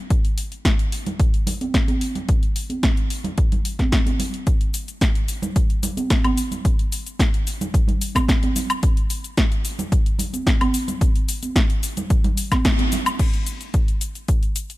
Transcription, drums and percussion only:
0.10 kick, closed hi-hat
0.25 closed hi-hat
0.38 open hi-hat
0.52 closed hi-hat
0.65 kick, snare, closed hi-hat
0.79 closed hi-hat
0.92 open hi-hat
1.06 closed hi-hat, low conga
1.20 kick, closed hi-hat
1.34 closed hi-hat
1.47 open hi-hat, low conga
1.61 closed hi-hat, high conga
1.74 kick, snare, closed hi-hat
1.88 closed hi-hat, high conga
2.01 open hi-hat
2.15 closed hi-hat, low conga
2.29 kick, closed hi-hat
2.43 closed hi-hat
2.56 open hi-hat
2.70 closed hi-hat, high conga
2.83 kick, snare, closed hi-hat
2.97 closed hi-hat
3.10 open hi-hat
3.24 closed hi-hat, low conga
3.38 kick, closed hi-hat
3.52 closed hi-hat, low conga
3.65 open hi-hat
3.79 kick, snare, closed hi-hat, high conga
3.92 kick, snare, closed hi-hat
4.06 closed hi-hat, high conga
4.19 open hi-hat, low conga
4.34 closed hi-hat
4.47 kick, closed hi-hat, shaker
4.61 closed hi-hat
4.74 open hi-hat, shaker
4.88 closed hi-hat, shaker
5.01 kick, snare, closed hi-hat, shaker
5.15 closed hi-hat
5.28 open hi-hat, shaker
5.42 closed hi-hat, low conga, shaker
5.56 kick, closed hi-hat, shaker
5.70 closed hi-hat
5.83 open hi-hat, low conga, shaker
5.97 closed hi-hat, high conga, shaker
6.10 kick, snare, closed hi-hat, shaker
6.24 closed hi-hat, high conga, high woodblock
6.37 open hi-hat, shaker
6.51 closed hi-hat, low conga, shaker
6.65 kick, closed hi-hat, shaker
6.79 closed hi-hat
6.92 open hi-hat, shaker
7.06 closed hi-hat, shaker
7.19 kick, snare, closed hi-hat, shaker
7.34 closed hi-hat
7.47 open hi-hat, shaker
7.61 closed hi-hat, low conga, shaker
7.74 kick, closed hi-hat, shaker
7.88 closed hi-hat, low conga
8.01 open hi-hat, shaker
8.15 kick, snare, closed hi-hat, high conga, high woodblock, shaker
8.29 kick, snare, closed hi-hat, shaker
8.43 closed hi-hat, high conga
8.56 open hi-hat, low conga, shaker
8.70 closed hi-hat, high woodblock, shaker
8.83 kick, closed hi-hat, shaker
8.97 closed hi-hat
9.10 open hi-hat, shaker
9.24 closed hi-hat, shaker
9.37 kick, snare, closed hi-hat, shaker
9.52 closed hi-hat
9.65 open hi-hat, shaker
9.79 closed hi-hat, low conga, shaker
9.92 kick, closed hi-hat, shaker
10.06 closed hi-hat
10.19 open hi-hat, low conga, shaker
10.33 closed hi-hat, high conga, shaker
10.47 kick, snare, closed hi-hat, shaker
10.61 closed hi-hat, high conga, high woodblock
10.74 open hi-hat, shaker
10.88 closed hi-hat, low conga, shaker
11.01 kick, closed hi-hat, shaker
11.16 closed hi-hat
11.29 open hi-hat, shaker
11.43 closed hi-hat, high conga, shaker
11.56 kick, snare, closed hi-hat, shaker
11.70 closed hi-hat
11.83 open hi-hat, shaker
11.97 closed hi-hat, low conga, shaker
12.10 kick, closed hi-hat, shaker
12.24 closed hi-hat, low conga
12.37 open hi-hat, shaker
12.52 kick, snare, closed hi-hat, high conga, high woodblock, shaker
12.65 kick, snare, closed hi-hat, shaker
12.79 closed hi-hat, high conga
12.92 open hi-hat, low conga, shaker
13.06 closed hi-hat, high woodblock, shaker
13.19 kick, closed hi-hat, crash, shaker
13.34 closed hi-hat, shaker
13.46 closed hi-hat, shaker
13.61 closed hi-hat, shaker
13.74 kick, closed hi-hat, shaker
13.88 closed hi-hat, shaker
14.01 closed hi-hat, shaker
14.15 closed hi-hat, shaker
14.28 kick, closed hi-hat, shaker
14.43 closed hi-hat, shaker
14.56 closed hi-hat, shaker
14.70 closed hi-hat, shaker

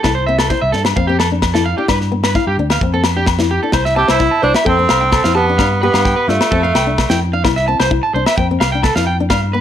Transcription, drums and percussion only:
0.04 kick, snare, low agogo
0.39 snare, low agogo
0.50 kick, snare
0.73 snare
0.85 snare, low agogo
0.97 kick
1.20 snare, low agogo
1.42 kick, snare, low agogo
1.55 snare
1.88 kick, snare, low agogo
2.01 snare
2.24 snare, low agogo
2.35 kick, snare
2.70 snare, low agogo
2.81 kick
3.04 snare, low agogo
3.26 kick, snare, low agogo
3.39 snare
3.72 kick, snare, low agogo
3.85 snare
4.09 snare, low agogo
4.20 kick, snare
4.55 snare, low agogo
4.66 kick
4.89 snare, low agogo
5.12 kick, snare, low agogo
5.24 snare
5.59 kick, snare, low agogo
5.94 snare, low agogo
6.05 kick, snare
6.29 snare
6.41 snare, low agogo
6.52 kick
6.75 snare, low agogo
6.98 kick, snare, low agogo
7.10 snare
7.45 kick, snare, low agogo
7.57 snare
7.80 snare, low agogo
7.91 kick
8.26 snare, low agogo
8.38 kick
8.61 snare, low agogo
8.83 kick, snare, low agogo
8.96 snare
9.30 kick, snare, low agogo

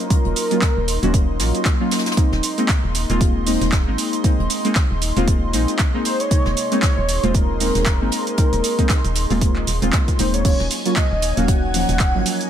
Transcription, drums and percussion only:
0.10 kick, closed hi-hat, shaker
0.25 closed hi-hat
0.36 closed hi-hat, open hi-hat, shaker
0.51 closed hi-hat, shaker
0.62 kick, snare, clap, closed hi-hat, shaker
0.88 closed hi-hat, open hi-hat, shaker
1.03 closed hi-hat, shaker
1.14 kick, closed hi-hat, shaker
1.40 snare, closed hi-hat, open hi-hat, shaker
1.54 closed hi-hat, shaker
1.65 kick, snare, clap, closed hi-hat, shaker
1.91 snare, closed hi-hat, open hi-hat, shaker
1.99 snare, closed hi-hat
2.06 snare, closed hi-hat, shaker
2.12 snare, closed hi-hat
2.17 kick, closed hi-hat, shaker
2.33 snare
2.43 closed hi-hat, open hi-hat, shaker
2.58 closed hi-hat, shaker
2.68 kick, snare, clap, closed hi-hat, shaker
2.95 closed hi-hat, open hi-hat, shaker
3.10 closed hi-hat, shaker
3.21 kick, closed hi-hat, shaker
3.47 open hi-hat, shaker
3.61 snare, closed hi-hat, shaker
3.72 kick, snare, clap, closed hi-hat, shaker
3.98 closed hi-hat, open hi-hat, shaker
4.13 closed hi-hat, shaker
4.24 kick, closed hi-hat, shaker
4.40 closed hi-hat
4.50 closed hi-hat, open hi-hat, shaker
4.65 closed hi-hat, shaker
4.75 kick, snare, clap, closed hi-hat, shaker
5.02 closed hi-hat, open hi-hat, shaker
5.17 closed hi-hat, shaker
5.28 kick, closed hi-hat, shaker
5.53 snare, closed hi-hat, open hi-hat, shaker
5.68 closed hi-hat, shaker
5.79 kick, snare, clap, closed hi-hat, shaker
6.05 closed hi-hat, open hi-hat, shaker
6.20 closed hi-hat, shaker
6.31 kick, closed hi-hat, shaker
6.45 snare
6.57 closed hi-hat, open hi-hat, shaker
6.72 closed hi-hat, shaker
6.82 kick, snare, clap, closed hi-hat, shaker
7.08 closed hi-hat, open hi-hat, shaker
7.24 closed hi-hat, shaker
7.34 kick, closed hi-hat, shaker
7.60 open hi-hat, shaker
7.75 snare, closed hi-hat, shaker
7.86 kick, snare, clap, closed hi-hat, shaker
8.11 closed hi-hat, open hi-hat, shaker
8.27 closed hi-hat, shaker
8.37 kick, closed hi-hat, shaker
8.53 closed hi-hat, shaker
8.64 closed hi-hat, open hi-hat, shaker
8.79 kick, closed hi-hat, shaker
8.89 kick, snare, clap, closed hi-hat, shaker
9.05 closed hi-hat, shaker
9.16 closed hi-hat, open hi-hat, shaker
9.30 open hi-hat, shaker
9.41 kick, closed hi-hat, shaker
9.56 clap
9.67 snare, closed hi-hat, open hi-hat, shaker
9.82 closed hi-hat, shaker
9.93 kick, snare, clap, closed hi-hat, shaker
10.08 kick, closed hi-hat, shaker
10.19 closed hi-hat, open hi-hat, shaker
10.34 closed hi-hat, shaker
10.45 kick, closed hi-hat, crash, shaker
10.60 snare
10.71 closed hi-hat, open hi-hat, ride, shaker
10.85 closed hi-hat, shaker
10.96 kick, snare, clap, closed hi-hat, shaker
11.22 closed hi-hat, open hi-hat, ride, shaker
11.37 closed hi-hat, shaker
11.48 kick, closed hi-hat, shaker
11.74 open hi-hat, ride, shaker
11.89 snare, closed hi-hat, shaker
11.99 kick, snare, clap, closed hi-hat, shaker
12.25 closed hi-hat, open hi-hat, ride, shaker
12.41 closed hi-hat, shaker

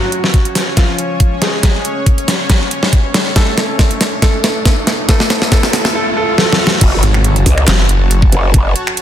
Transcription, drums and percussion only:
0.12 closed hi-hat
0.24 snare
0.34 kick, closed hi-hat
0.45 closed hi-hat
0.55 snare, open hi-hat
0.77 kick, snare, closed hi-hat
0.99 closed hi-hat
1.20 kick, closed hi-hat
1.42 snare, closed hi-hat
1.63 kick, snare, closed hi-hat
1.85 closed hi-hat
2.06 kick, closed hi-hat
2.18 closed hi-hat
2.28 snare, open hi-hat
2.50 kick, snare, closed hi-hat
2.71 closed hi-hat
2.83 snare
2.93 kick, closed hi-hat
3.14 snare, closed hi-hat
3.36 kick, snare, closed hi-hat
3.58 snare, closed hi-hat
3.79 kick, snare, closed hi-hat
3.91 closed hi-hat
4.01 snare, open hi-hat
4.22 kick, snare, closed hi-hat
4.44 snare, closed hi-hat
4.65 kick, snare, closed hi-hat
4.87 snare, closed hi-hat
5.09 kick, snare, closed hi-hat
5.20 snare
5.30 snare, closed hi-hat
5.42 snare
5.52 kick, snare, closed hi-hat
5.63 snare, closed hi-hat
5.73 snare, open hi-hat
5.85 snare
6.38 snare
6.53 snare
6.67 snare
6.81 kick, closed hi-hat, crash
7.03 closed hi-hat
7.14 finger snap
7.24 closed hi-hat
7.36 closed hi-hat
7.46 kick, open hi-hat
7.58 finger snap
7.68 snare, clap, closed hi-hat
7.89 closed hi-hat
8.11 closed hi-hat
8.22 kick
8.32 closed hi-hat
8.54 kick, closed hi-hat
8.76 closed hi-hat
8.87 finger snap
8.97 closed hi-hat

